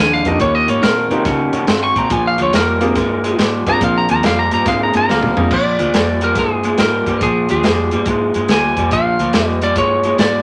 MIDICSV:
0, 0, Header, 1, 6, 480
1, 0, Start_track
1, 0, Tempo, 425230
1, 456, Time_signature, 4, 2, 24, 8
1, 11762, End_track
2, 0, Start_track
2, 0, Title_t, "Lead electric guitar"
2, 0, Program_c, 0, 29
2, 0, Note_on_c, 0, 80, 86
2, 140, Note_off_c, 0, 80, 0
2, 152, Note_on_c, 0, 77, 87
2, 312, Note_off_c, 0, 77, 0
2, 312, Note_on_c, 0, 75, 83
2, 459, Note_off_c, 0, 75, 0
2, 468, Note_on_c, 0, 73, 97
2, 620, Note_off_c, 0, 73, 0
2, 620, Note_on_c, 0, 75, 90
2, 784, Note_off_c, 0, 75, 0
2, 784, Note_on_c, 0, 73, 88
2, 935, Note_off_c, 0, 73, 0
2, 936, Note_on_c, 0, 70, 100
2, 1402, Note_off_c, 0, 70, 0
2, 2075, Note_on_c, 0, 85, 103
2, 2239, Note_off_c, 0, 85, 0
2, 2239, Note_on_c, 0, 82, 84
2, 2396, Note_off_c, 0, 82, 0
2, 2396, Note_on_c, 0, 80, 103
2, 2542, Note_off_c, 0, 80, 0
2, 2567, Note_on_c, 0, 77, 96
2, 2708, Note_off_c, 0, 77, 0
2, 2734, Note_on_c, 0, 73, 85
2, 2872, Note_off_c, 0, 73, 0
2, 2879, Note_on_c, 0, 70, 108
2, 3801, Note_off_c, 0, 70, 0
2, 4168, Note_on_c, 0, 82, 115
2, 4309, Note_off_c, 0, 82, 0
2, 4333, Note_on_c, 0, 77, 100
2, 4472, Note_off_c, 0, 77, 0
2, 4488, Note_on_c, 0, 82, 98
2, 4629, Note_off_c, 0, 82, 0
2, 4642, Note_on_c, 0, 82, 86
2, 4786, Note_off_c, 0, 82, 0
2, 4809, Note_on_c, 0, 77, 89
2, 4950, Note_off_c, 0, 77, 0
2, 4956, Note_on_c, 0, 82, 87
2, 5103, Note_off_c, 0, 82, 0
2, 5121, Note_on_c, 0, 82, 89
2, 5266, Note_off_c, 0, 82, 0
2, 5283, Note_on_c, 0, 77, 93
2, 5427, Note_off_c, 0, 77, 0
2, 5456, Note_on_c, 0, 82, 92
2, 5593, Note_off_c, 0, 82, 0
2, 5610, Note_on_c, 0, 82, 100
2, 5770, Note_on_c, 0, 77, 99
2, 6216, Note_off_c, 0, 82, 0
2, 6248, Note_on_c, 0, 74, 86
2, 6249, Note_off_c, 0, 77, 0
2, 7042, Note_on_c, 0, 70, 75
2, 7052, Note_off_c, 0, 74, 0
2, 7198, Note_off_c, 0, 70, 0
2, 7212, Note_on_c, 0, 68, 91
2, 7669, Note_off_c, 0, 68, 0
2, 7673, Note_on_c, 0, 70, 82
2, 8153, Note_off_c, 0, 70, 0
2, 8158, Note_on_c, 0, 68, 85
2, 8464, Note_off_c, 0, 68, 0
2, 8477, Note_on_c, 0, 68, 82
2, 9610, Note_on_c, 0, 80, 94
2, 9623, Note_off_c, 0, 68, 0
2, 10074, Note_off_c, 0, 80, 0
2, 10078, Note_on_c, 0, 77, 100
2, 10688, Note_off_c, 0, 77, 0
2, 10688, Note_on_c, 0, 75, 100
2, 10876, Note_on_c, 0, 74, 82
2, 10886, Note_off_c, 0, 75, 0
2, 11033, Note_off_c, 0, 74, 0
2, 11043, Note_on_c, 0, 73, 100
2, 11507, Note_off_c, 0, 73, 0
2, 11511, Note_on_c, 0, 74, 91
2, 11762, Note_off_c, 0, 74, 0
2, 11762, End_track
3, 0, Start_track
3, 0, Title_t, "Upright piano"
3, 0, Program_c, 1, 0
3, 292, Note_on_c, 1, 58, 70
3, 293, Note_on_c, 1, 65, 64
3, 295, Note_on_c, 1, 61, 65
3, 295, Note_on_c, 1, 63, 63
3, 296, Note_on_c, 1, 67, 80
3, 904, Note_off_c, 1, 58, 0
3, 905, Note_off_c, 1, 61, 0
3, 905, Note_off_c, 1, 63, 0
3, 905, Note_off_c, 1, 65, 0
3, 906, Note_off_c, 1, 67, 0
3, 1260, Note_on_c, 1, 61, 66
3, 1261, Note_on_c, 1, 58, 72
3, 1262, Note_on_c, 1, 65, 68
3, 1265, Note_on_c, 1, 63, 69
3, 1269, Note_on_c, 1, 67, 84
3, 1869, Note_off_c, 1, 58, 0
3, 1869, Note_off_c, 1, 61, 0
3, 1869, Note_off_c, 1, 65, 0
3, 1871, Note_off_c, 1, 63, 0
3, 1873, Note_off_c, 1, 67, 0
3, 3165, Note_on_c, 1, 58, 78
3, 3168, Note_on_c, 1, 60, 70
3, 3171, Note_on_c, 1, 62, 73
3, 3173, Note_on_c, 1, 65, 74
3, 3178, Note_on_c, 1, 68, 88
3, 3318, Note_off_c, 1, 58, 0
3, 3319, Note_off_c, 1, 60, 0
3, 3321, Note_off_c, 1, 62, 0
3, 3322, Note_off_c, 1, 65, 0
3, 3324, Note_off_c, 1, 68, 0
3, 4141, Note_on_c, 1, 58, 76
3, 4145, Note_on_c, 1, 62, 74
3, 4147, Note_on_c, 1, 60, 71
3, 4150, Note_on_c, 1, 65, 73
3, 4150, Note_on_c, 1, 68, 83
3, 4750, Note_off_c, 1, 58, 0
3, 4752, Note_off_c, 1, 62, 0
3, 4753, Note_off_c, 1, 60, 0
3, 4754, Note_off_c, 1, 65, 0
3, 4754, Note_off_c, 1, 68, 0
3, 5249, Note_on_c, 1, 58, 72
3, 5250, Note_on_c, 1, 60, 59
3, 5255, Note_on_c, 1, 62, 61
3, 5258, Note_on_c, 1, 68, 73
3, 5261, Note_on_c, 1, 65, 61
3, 5986, Note_off_c, 1, 58, 0
3, 5987, Note_off_c, 1, 60, 0
3, 5989, Note_off_c, 1, 62, 0
3, 5991, Note_off_c, 1, 68, 0
3, 5992, Note_off_c, 1, 65, 0
3, 6049, Note_on_c, 1, 58, 72
3, 6050, Note_on_c, 1, 60, 71
3, 6054, Note_on_c, 1, 62, 69
3, 6056, Note_on_c, 1, 65, 72
3, 6057, Note_on_c, 1, 68, 84
3, 6200, Note_off_c, 1, 58, 0
3, 6201, Note_off_c, 1, 60, 0
3, 6203, Note_off_c, 1, 62, 0
3, 6204, Note_off_c, 1, 65, 0
3, 6204, Note_off_c, 1, 68, 0
3, 11762, End_track
4, 0, Start_track
4, 0, Title_t, "Clean electric guitar"
4, 0, Program_c, 2, 27
4, 0, Note_on_c, 2, 41, 81
4, 0, Note_on_c, 2, 50, 92
4, 262, Note_off_c, 2, 41, 0
4, 265, Note_off_c, 2, 50, 0
4, 296, Note_on_c, 2, 41, 75
4, 301, Note_on_c, 2, 50, 84
4, 442, Note_off_c, 2, 41, 0
4, 444, Note_off_c, 2, 50, 0
4, 456, Note_on_c, 2, 51, 77
4, 462, Note_on_c, 2, 58, 84
4, 740, Note_off_c, 2, 51, 0
4, 742, Note_off_c, 2, 58, 0
4, 762, Note_on_c, 2, 51, 74
4, 770, Note_on_c, 2, 58, 77
4, 915, Note_off_c, 2, 51, 0
4, 919, Note_off_c, 2, 58, 0
4, 927, Note_on_c, 2, 51, 84
4, 938, Note_on_c, 2, 60, 98
4, 1215, Note_off_c, 2, 51, 0
4, 1221, Note_off_c, 2, 60, 0
4, 1246, Note_on_c, 2, 51, 75
4, 1253, Note_on_c, 2, 60, 86
4, 1397, Note_off_c, 2, 51, 0
4, 1401, Note_off_c, 2, 60, 0
4, 1417, Note_on_c, 2, 51, 75
4, 1420, Note_on_c, 2, 61, 86
4, 1701, Note_off_c, 2, 51, 0
4, 1702, Note_off_c, 2, 61, 0
4, 1725, Note_on_c, 2, 51, 73
4, 1728, Note_on_c, 2, 61, 78
4, 1877, Note_off_c, 2, 51, 0
4, 1879, Note_off_c, 2, 61, 0
4, 1897, Note_on_c, 2, 51, 85
4, 1900, Note_on_c, 2, 60, 98
4, 2181, Note_off_c, 2, 51, 0
4, 2183, Note_off_c, 2, 60, 0
4, 2209, Note_on_c, 2, 51, 74
4, 2215, Note_on_c, 2, 60, 85
4, 2359, Note_off_c, 2, 51, 0
4, 2362, Note_off_c, 2, 60, 0
4, 2374, Note_on_c, 2, 46, 84
4, 2381, Note_on_c, 2, 53, 91
4, 2660, Note_off_c, 2, 46, 0
4, 2663, Note_off_c, 2, 53, 0
4, 2689, Note_on_c, 2, 46, 78
4, 2698, Note_on_c, 2, 53, 91
4, 2840, Note_off_c, 2, 46, 0
4, 2844, Note_off_c, 2, 53, 0
4, 2857, Note_on_c, 2, 46, 91
4, 2864, Note_on_c, 2, 55, 93
4, 3141, Note_off_c, 2, 46, 0
4, 3145, Note_off_c, 2, 55, 0
4, 3168, Note_on_c, 2, 46, 82
4, 3172, Note_on_c, 2, 55, 87
4, 3319, Note_off_c, 2, 46, 0
4, 3321, Note_off_c, 2, 55, 0
4, 3335, Note_on_c, 2, 46, 86
4, 3339, Note_on_c, 2, 56, 96
4, 3621, Note_off_c, 2, 46, 0
4, 3622, Note_off_c, 2, 56, 0
4, 3655, Note_on_c, 2, 46, 71
4, 3660, Note_on_c, 2, 56, 82
4, 3803, Note_off_c, 2, 46, 0
4, 3805, Note_off_c, 2, 56, 0
4, 3818, Note_on_c, 2, 46, 87
4, 3823, Note_on_c, 2, 55, 94
4, 4102, Note_off_c, 2, 46, 0
4, 4104, Note_off_c, 2, 55, 0
4, 4136, Note_on_c, 2, 46, 74
4, 4141, Note_on_c, 2, 55, 89
4, 4283, Note_off_c, 2, 46, 0
4, 4286, Note_off_c, 2, 55, 0
4, 4299, Note_on_c, 2, 46, 81
4, 4304, Note_on_c, 2, 53, 96
4, 4582, Note_off_c, 2, 46, 0
4, 4585, Note_off_c, 2, 53, 0
4, 4620, Note_on_c, 2, 46, 76
4, 4624, Note_on_c, 2, 53, 81
4, 4765, Note_off_c, 2, 46, 0
4, 4768, Note_off_c, 2, 53, 0
4, 4778, Note_on_c, 2, 46, 78
4, 4786, Note_on_c, 2, 55, 103
4, 5062, Note_off_c, 2, 46, 0
4, 5066, Note_off_c, 2, 55, 0
4, 5094, Note_on_c, 2, 46, 74
4, 5096, Note_on_c, 2, 55, 80
4, 5242, Note_off_c, 2, 46, 0
4, 5243, Note_off_c, 2, 55, 0
4, 5254, Note_on_c, 2, 46, 86
4, 5262, Note_on_c, 2, 56, 98
4, 5540, Note_off_c, 2, 46, 0
4, 5544, Note_off_c, 2, 56, 0
4, 5571, Note_on_c, 2, 46, 69
4, 5580, Note_on_c, 2, 56, 81
4, 5721, Note_off_c, 2, 46, 0
4, 5726, Note_off_c, 2, 56, 0
4, 5744, Note_on_c, 2, 46, 86
4, 5747, Note_on_c, 2, 55, 87
4, 6025, Note_off_c, 2, 46, 0
4, 6027, Note_off_c, 2, 55, 0
4, 6062, Note_on_c, 2, 46, 72
4, 6065, Note_on_c, 2, 55, 80
4, 6207, Note_off_c, 2, 46, 0
4, 6208, Note_off_c, 2, 55, 0
4, 6218, Note_on_c, 2, 46, 74
4, 6226, Note_on_c, 2, 53, 82
4, 6502, Note_off_c, 2, 46, 0
4, 6506, Note_off_c, 2, 53, 0
4, 6539, Note_on_c, 2, 46, 75
4, 6545, Note_on_c, 2, 53, 72
4, 6685, Note_off_c, 2, 46, 0
4, 6688, Note_off_c, 2, 53, 0
4, 6708, Note_on_c, 2, 46, 87
4, 6714, Note_on_c, 2, 55, 84
4, 6987, Note_off_c, 2, 46, 0
4, 6990, Note_off_c, 2, 55, 0
4, 7019, Note_on_c, 2, 46, 82
4, 7022, Note_on_c, 2, 55, 83
4, 7165, Note_off_c, 2, 46, 0
4, 7167, Note_off_c, 2, 55, 0
4, 7183, Note_on_c, 2, 46, 69
4, 7184, Note_on_c, 2, 56, 89
4, 7464, Note_off_c, 2, 46, 0
4, 7465, Note_off_c, 2, 56, 0
4, 7499, Note_on_c, 2, 46, 68
4, 7505, Note_on_c, 2, 56, 74
4, 7645, Note_off_c, 2, 46, 0
4, 7648, Note_off_c, 2, 56, 0
4, 7666, Note_on_c, 2, 46, 79
4, 7668, Note_on_c, 2, 55, 96
4, 7946, Note_off_c, 2, 46, 0
4, 7947, Note_off_c, 2, 55, 0
4, 7980, Note_on_c, 2, 46, 72
4, 7987, Note_on_c, 2, 55, 80
4, 8126, Note_off_c, 2, 46, 0
4, 8129, Note_off_c, 2, 55, 0
4, 8150, Note_on_c, 2, 46, 77
4, 8155, Note_on_c, 2, 53, 81
4, 8428, Note_off_c, 2, 46, 0
4, 8431, Note_off_c, 2, 53, 0
4, 8463, Note_on_c, 2, 46, 72
4, 8469, Note_on_c, 2, 53, 85
4, 8607, Note_off_c, 2, 46, 0
4, 8610, Note_off_c, 2, 53, 0
4, 8629, Note_on_c, 2, 46, 74
4, 8636, Note_on_c, 2, 55, 86
4, 8908, Note_off_c, 2, 46, 0
4, 8911, Note_off_c, 2, 55, 0
4, 8941, Note_on_c, 2, 46, 68
4, 8952, Note_on_c, 2, 55, 80
4, 9086, Note_off_c, 2, 46, 0
4, 9091, Note_off_c, 2, 55, 0
4, 9114, Note_on_c, 2, 46, 79
4, 9117, Note_on_c, 2, 56, 93
4, 9389, Note_off_c, 2, 46, 0
4, 9391, Note_off_c, 2, 56, 0
4, 9428, Note_on_c, 2, 46, 66
4, 9435, Note_on_c, 2, 56, 71
4, 9569, Note_off_c, 2, 46, 0
4, 9573, Note_off_c, 2, 56, 0
4, 9596, Note_on_c, 2, 46, 77
4, 9603, Note_on_c, 2, 55, 88
4, 9871, Note_off_c, 2, 46, 0
4, 9874, Note_off_c, 2, 55, 0
4, 9911, Note_on_c, 2, 46, 72
4, 9916, Note_on_c, 2, 55, 84
4, 10050, Note_off_c, 2, 46, 0
4, 10053, Note_off_c, 2, 55, 0
4, 10076, Note_on_c, 2, 46, 85
4, 10081, Note_on_c, 2, 53, 85
4, 10350, Note_off_c, 2, 46, 0
4, 10353, Note_off_c, 2, 53, 0
4, 10385, Note_on_c, 2, 46, 72
4, 10389, Note_on_c, 2, 53, 78
4, 10527, Note_off_c, 2, 46, 0
4, 10529, Note_off_c, 2, 53, 0
4, 10546, Note_on_c, 2, 46, 92
4, 10549, Note_on_c, 2, 55, 90
4, 10825, Note_off_c, 2, 46, 0
4, 10826, Note_off_c, 2, 55, 0
4, 10860, Note_on_c, 2, 46, 71
4, 10867, Note_on_c, 2, 55, 85
4, 11004, Note_off_c, 2, 46, 0
4, 11008, Note_off_c, 2, 55, 0
4, 11027, Note_on_c, 2, 46, 74
4, 11030, Note_on_c, 2, 56, 92
4, 11305, Note_off_c, 2, 46, 0
4, 11306, Note_off_c, 2, 56, 0
4, 11342, Note_on_c, 2, 46, 68
4, 11349, Note_on_c, 2, 56, 73
4, 11485, Note_off_c, 2, 46, 0
4, 11488, Note_off_c, 2, 56, 0
4, 11508, Note_on_c, 2, 46, 81
4, 11516, Note_on_c, 2, 55, 86
4, 11762, Note_off_c, 2, 46, 0
4, 11762, Note_off_c, 2, 55, 0
4, 11762, End_track
5, 0, Start_track
5, 0, Title_t, "Fingered electric bass"
5, 0, Program_c, 3, 33
5, 0, Note_on_c, 3, 39, 86
5, 251, Note_off_c, 3, 39, 0
5, 290, Note_on_c, 3, 41, 89
5, 435, Note_off_c, 3, 41, 0
5, 459, Note_on_c, 3, 39, 92
5, 735, Note_off_c, 3, 39, 0
5, 773, Note_on_c, 3, 44, 87
5, 917, Note_off_c, 3, 44, 0
5, 939, Note_on_c, 3, 46, 97
5, 1215, Note_off_c, 3, 46, 0
5, 1246, Note_on_c, 3, 48, 93
5, 1394, Note_off_c, 3, 48, 0
5, 1417, Note_on_c, 3, 49, 91
5, 1694, Note_off_c, 3, 49, 0
5, 1728, Note_on_c, 3, 48, 92
5, 1875, Note_off_c, 3, 48, 0
5, 1891, Note_on_c, 3, 43, 83
5, 2171, Note_off_c, 3, 43, 0
5, 2211, Note_on_c, 3, 46, 91
5, 2357, Note_off_c, 3, 46, 0
5, 2376, Note_on_c, 3, 34, 101
5, 2654, Note_off_c, 3, 34, 0
5, 2694, Note_on_c, 3, 38, 97
5, 2839, Note_off_c, 3, 38, 0
5, 2856, Note_on_c, 3, 41, 99
5, 3280, Note_off_c, 3, 41, 0
5, 3340, Note_on_c, 3, 43, 87
5, 3762, Note_off_c, 3, 43, 0
5, 3823, Note_on_c, 3, 44, 93
5, 4098, Note_off_c, 3, 44, 0
5, 4139, Note_on_c, 3, 43, 93
5, 4282, Note_off_c, 3, 43, 0
5, 4303, Note_on_c, 3, 34, 94
5, 4579, Note_off_c, 3, 34, 0
5, 4624, Note_on_c, 3, 39, 95
5, 4765, Note_off_c, 3, 39, 0
5, 4784, Note_on_c, 3, 41, 96
5, 5059, Note_off_c, 3, 41, 0
5, 5102, Note_on_c, 3, 43, 85
5, 5244, Note_off_c, 3, 43, 0
5, 5260, Note_on_c, 3, 44, 95
5, 5537, Note_off_c, 3, 44, 0
5, 5585, Note_on_c, 3, 43, 91
5, 5726, Note_off_c, 3, 43, 0
5, 5754, Note_on_c, 3, 38, 97
5, 6025, Note_off_c, 3, 38, 0
5, 6060, Note_on_c, 3, 41, 94
5, 6203, Note_off_c, 3, 41, 0
5, 6542, Note_on_c, 3, 38, 90
5, 6684, Note_off_c, 3, 38, 0
5, 6713, Note_on_c, 3, 41, 88
5, 7130, Note_off_c, 3, 41, 0
5, 7175, Note_on_c, 3, 43, 87
5, 7600, Note_off_c, 3, 43, 0
5, 7665, Note_on_c, 3, 44, 78
5, 7940, Note_off_c, 3, 44, 0
5, 7975, Note_on_c, 3, 43, 90
5, 8120, Note_off_c, 3, 43, 0
5, 8142, Note_on_c, 3, 34, 97
5, 8418, Note_off_c, 3, 34, 0
5, 8468, Note_on_c, 3, 39, 89
5, 8607, Note_off_c, 3, 39, 0
5, 8636, Note_on_c, 3, 41, 90
5, 8905, Note_off_c, 3, 41, 0
5, 8949, Note_on_c, 3, 43, 84
5, 9088, Note_off_c, 3, 43, 0
5, 9099, Note_on_c, 3, 44, 89
5, 9376, Note_off_c, 3, 44, 0
5, 9427, Note_on_c, 3, 43, 88
5, 9566, Note_off_c, 3, 43, 0
5, 9582, Note_on_c, 3, 38, 91
5, 9857, Note_off_c, 3, 38, 0
5, 9900, Note_on_c, 3, 41, 81
5, 10042, Note_off_c, 3, 41, 0
5, 10061, Note_on_c, 3, 34, 93
5, 10336, Note_off_c, 3, 34, 0
5, 10370, Note_on_c, 3, 38, 94
5, 10516, Note_off_c, 3, 38, 0
5, 10537, Note_on_c, 3, 41, 90
5, 10959, Note_off_c, 3, 41, 0
5, 11018, Note_on_c, 3, 43, 85
5, 11439, Note_off_c, 3, 43, 0
5, 11496, Note_on_c, 3, 44, 89
5, 11762, Note_off_c, 3, 44, 0
5, 11762, End_track
6, 0, Start_track
6, 0, Title_t, "Drums"
6, 282, Note_on_c, 9, 42, 61
6, 286, Note_on_c, 9, 36, 71
6, 395, Note_off_c, 9, 42, 0
6, 399, Note_off_c, 9, 36, 0
6, 447, Note_on_c, 9, 42, 87
6, 452, Note_on_c, 9, 36, 104
6, 560, Note_off_c, 9, 42, 0
6, 565, Note_off_c, 9, 36, 0
6, 769, Note_on_c, 9, 42, 61
6, 882, Note_off_c, 9, 42, 0
6, 934, Note_on_c, 9, 42, 86
6, 942, Note_on_c, 9, 38, 104
6, 1047, Note_off_c, 9, 42, 0
6, 1055, Note_off_c, 9, 38, 0
6, 1250, Note_on_c, 9, 42, 59
6, 1363, Note_off_c, 9, 42, 0
6, 1412, Note_on_c, 9, 42, 80
6, 1414, Note_on_c, 9, 36, 113
6, 1420, Note_on_c, 9, 38, 35
6, 1525, Note_off_c, 9, 42, 0
6, 1526, Note_off_c, 9, 36, 0
6, 1533, Note_off_c, 9, 38, 0
6, 1726, Note_on_c, 9, 42, 63
6, 1839, Note_off_c, 9, 42, 0
6, 1889, Note_on_c, 9, 42, 84
6, 1897, Note_on_c, 9, 38, 120
6, 2002, Note_off_c, 9, 42, 0
6, 2010, Note_off_c, 9, 38, 0
6, 2211, Note_on_c, 9, 36, 80
6, 2214, Note_on_c, 9, 42, 63
6, 2324, Note_off_c, 9, 36, 0
6, 2326, Note_off_c, 9, 42, 0
6, 2372, Note_on_c, 9, 42, 82
6, 2375, Note_on_c, 9, 36, 113
6, 2485, Note_off_c, 9, 42, 0
6, 2488, Note_off_c, 9, 36, 0
6, 2688, Note_on_c, 9, 42, 63
6, 2801, Note_off_c, 9, 42, 0
6, 2857, Note_on_c, 9, 42, 92
6, 2865, Note_on_c, 9, 38, 108
6, 2970, Note_off_c, 9, 42, 0
6, 2978, Note_off_c, 9, 38, 0
6, 3169, Note_on_c, 9, 42, 64
6, 3282, Note_off_c, 9, 42, 0
6, 3334, Note_on_c, 9, 42, 86
6, 3338, Note_on_c, 9, 36, 113
6, 3342, Note_on_c, 9, 38, 34
6, 3447, Note_off_c, 9, 42, 0
6, 3451, Note_off_c, 9, 36, 0
6, 3455, Note_off_c, 9, 38, 0
6, 3658, Note_on_c, 9, 42, 64
6, 3771, Note_off_c, 9, 42, 0
6, 3822, Note_on_c, 9, 42, 91
6, 3830, Note_on_c, 9, 38, 116
6, 3935, Note_off_c, 9, 42, 0
6, 3943, Note_off_c, 9, 38, 0
6, 4137, Note_on_c, 9, 36, 76
6, 4138, Note_on_c, 9, 42, 63
6, 4250, Note_off_c, 9, 36, 0
6, 4250, Note_off_c, 9, 42, 0
6, 4301, Note_on_c, 9, 36, 116
6, 4301, Note_on_c, 9, 42, 89
6, 4413, Note_off_c, 9, 42, 0
6, 4414, Note_off_c, 9, 36, 0
6, 4612, Note_on_c, 9, 42, 68
6, 4725, Note_off_c, 9, 42, 0
6, 4777, Note_on_c, 9, 42, 80
6, 4784, Note_on_c, 9, 38, 105
6, 4889, Note_off_c, 9, 42, 0
6, 4897, Note_off_c, 9, 38, 0
6, 5094, Note_on_c, 9, 42, 58
6, 5207, Note_off_c, 9, 42, 0
6, 5256, Note_on_c, 9, 42, 85
6, 5258, Note_on_c, 9, 36, 117
6, 5264, Note_on_c, 9, 38, 36
6, 5369, Note_off_c, 9, 42, 0
6, 5371, Note_off_c, 9, 36, 0
6, 5377, Note_off_c, 9, 38, 0
6, 5570, Note_on_c, 9, 42, 61
6, 5683, Note_off_c, 9, 42, 0
6, 5751, Note_on_c, 9, 38, 66
6, 5863, Note_off_c, 9, 38, 0
6, 5898, Note_on_c, 9, 47, 73
6, 6011, Note_off_c, 9, 47, 0
6, 6060, Note_on_c, 9, 43, 95
6, 6173, Note_off_c, 9, 43, 0
6, 6218, Note_on_c, 9, 36, 114
6, 6220, Note_on_c, 9, 49, 92
6, 6331, Note_off_c, 9, 36, 0
6, 6333, Note_off_c, 9, 49, 0
6, 6536, Note_on_c, 9, 42, 62
6, 6649, Note_off_c, 9, 42, 0
6, 6702, Note_on_c, 9, 42, 83
6, 6710, Note_on_c, 9, 38, 104
6, 6815, Note_off_c, 9, 42, 0
6, 6823, Note_off_c, 9, 38, 0
6, 7011, Note_on_c, 9, 42, 63
6, 7124, Note_off_c, 9, 42, 0
6, 7171, Note_on_c, 9, 42, 88
6, 7176, Note_on_c, 9, 36, 115
6, 7179, Note_on_c, 9, 38, 32
6, 7284, Note_off_c, 9, 42, 0
6, 7289, Note_off_c, 9, 36, 0
6, 7292, Note_off_c, 9, 38, 0
6, 7489, Note_on_c, 9, 42, 59
6, 7602, Note_off_c, 9, 42, 0
6, 7649, Note_on_c, 9, 42, 82
6, 7657, Note_on_c, 9, 38, 111
6, 7762, Note_off_c, 9, 42, 0
6, 7770, Note_off_c, 9, 38, 0
6, 7973, Note_on_c, 9, 36, 68
6, 7976, Note_on_c, 9, 42, 60
6, 8086, Note_off_c, 9, 36, 0
6, 8088, Note_off_c, 9, 42, 0
6, 8138, Note_on_c, 9, 42, 82
6, 8139, Note_on_c, 9, 36, 107
6, 8251, Note_off_c, 9, 36, 0
6, 8251, Note_off_c, 9, 42, 0
6, 8451, Note_on_c, 9, 42, 64
6, 8564, Note_off_c, 9, 42, 0
6, 8617, Note_on_c, 9, 42, 75
6, 8625, Note_on_c, 9, 38, 105
6, 8730, Note_off_c, 9, 42, 0
6, 8738, Note_off_c, 9, 38, 0
6, 8931, Note_on_c, 9, 42, 57
6, 9044, Note_off_c, 9, 42, 0
6, 9093, Note_on_c, 9, 42, 82
6, 9099, Note_on_c, 9, 36, 113
6, 9206, Note_off_c, 9, 42, 0
6, 9211, Note_off_c, 9, 36, 0
6, 9416, Note_on_c, 9, 42, 59
6, 9528, Note_off_c, 9, 42, 0
6, 9577, Note_on_c, 9, 42, 83
6, 9585, Note_on_c, 9, 38, 112
6, 9690, Note_off_c, 9, 42, 0
6, 9698, Note_off_c, 9, 38, 0
6, 9896, Note_on_c, 9, 36, 75
6, 9896, Note_on_c, 9, 42, 56
6, 10009, Note_off_c, 9, 36, 0
6, 10009, Note_off_c, 9, 42, 0
6, 10058, Note_on_c, 9, 42, 79
6, 10061, Note_on_c, 9, 36, 107
6, 10171, Note_off_c, 9, 42, 0
6, 10174, Note_off_c, 9, 36, 0
6, 10377, Note_on_c, 9, 42, 61
6, 10489, Note_off_c, 9, 42, 0
6, 10532, Note_on_c, 9, 42, 82
6, 10540, Note_on_c, 9, 38, 105
6, 10645, Note_off_c, 9, 42, 0
6, 10653, Note_off_c, 9, 38, 0
6, 10853, Note_on_c, 9, 42, 67
6, 10966, Note_off_c, 9, 42, 0
6, 11014, Note_on_c, 9, 42, 86
6, 11015, Note_on_c, 9, 36, 108
6, 11127, Note_off_c, 9, 36, 0
6, 11127, Note_off_c, 9, 42, 0
6, 11327, Note_on_c, 9, 42, 62
6, 11440, Note_off_c, 9, 42, 0
6, 11494, Note_on_c, 9, 42, 87
6, 11502, Note_on_c, 9, 38, 112
6, 11607, Note_off_c, 9, 42, 0
6, 11615, Note_off_c, 9, 38, 0
6, 11762, End_track
0, 0, End_of_file